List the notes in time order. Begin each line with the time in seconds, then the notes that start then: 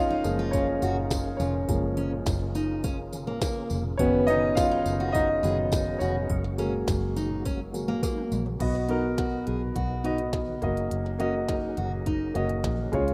Already playing: F#1 C#3 C#4 D#4 F4 G#4 A#4 C#5 D#5 F5
0.10 D#4
0.24 F#1 F3 G#3 A#3, open hi-hat, tambourine
0.39 F4
0.51 C#4 C#5, kick, open hi-hat, tambourine
0.82 F#1 F#4, floor tom, open hi-hat, tambourine
1.10 kick, snare, open hi-hat, tambourine
1.37 F1 C#4 F4 C#5, floor tom, open hi-hat, tambourine
1.68 F#1 F3 G#3 A#3, kick, open hi-hat, tambourine
1.97 C#4, floor tom, open hi-hat
2.26 F#1, kick, snare, open hi-hat, tambourine
2.55 D#4, open hi-hat, tambourine
2.84 C#4, kick, open hi-hat, tambourine
3.13 floor tom, open hi-hat, tambourine
3.27 A#3
3.41 A#3, kick, snare, open hi-hat, tambourine
3.70 F1, floor tom, open hi-hat, tambourine
3.97 F#1 D#3 F#3 B3 C#4 D#4 G#4 B4 C#5, kick, open hi-hat
4.27 C#4 D#4 D#5, floor tom, open hi-hat
4.55 F4 F5, kick, snare, open hi-hat, tambourine
4.71 D#4
4.86 F#1, open hi-hat, tambourine
5.00 F#4
5.12 D#4 D#5, kick, open hi-hat, tambourine
5.43 F#1 D#3 F#3 B3 G#4, floor tom, open hi-hat, tambourine
5.72 kick, snare, open hi-hat, tambourine
5.99 F1 C#4 F#4 C#5, floor tom, open hi-hat, tambourine
6.30 F#1 G#3 A#3 F#4, kick, open hi-hat
6.44 snare
6.58 F#3 G#3 A#3 C#4, floor tom, open hi-hat, tambourine
6.88 F#1, kick, snare, open hi-hat, tambourine
7.16 D#4, floor tom, open hi-hat, tambourine
7.45 C#4, kick, open hi-hat, tambourine
7.73 F#3 G#3 A#3, floor tom, open hi-hat, tambourine
7.88 A#3
8.03 A#3, kick, open hi-hat, high tom, tambourine
8.18 mid tom
8.32 A#1, mid tom, open hi-hat, tambourine
8.46 floor tom
8.59 B1 B2 F#3 B3 D#4 F#4 D#5, kick, closed hi-hat, crash
8.75 snare
8.88 B3 D#4 F#4 A#4, closed hi-hat
9.18 F#4, kick, snare, closed hi-hat
9.47 B1 G#4, closed hi-hat, floor tom
9.75 B1 F#4, kick, closed hi-hat
10.04 B3 D#4 F#4 D#5, closed hi-hat, floor tom
10.18 closed hi-hat
10.33 kick, snare, closed hi-hat
10.48 floor tom
10.61 F#1 F#3 A#3 C#4 F#4 G#4 A#4 D#5, kick, closed hi-hat
10.77 closed hi-hat
10.91 F#1, closed hi-hat
11.06 snare
11.19 A#3 C#4 F#4 D#5, closed hi-hat
11.49 D#4, kick, snare, closed hi-hat
11.77 F#1 F#4, closed hi-hat, floor tom
12.06 D#4, kick, closed hi-hat
12.34 F#1 A#3 C#4 F#4 D#5, closed hi-hat, floor tom
12.49 closed hi-hat
12.64 A#1, kick, snare, closed hi-hat
12.79 floor tom
12.92 C#2 C#3 G#3 F4 C#5, kick, closed hi-hat
13.08 closed hi-hat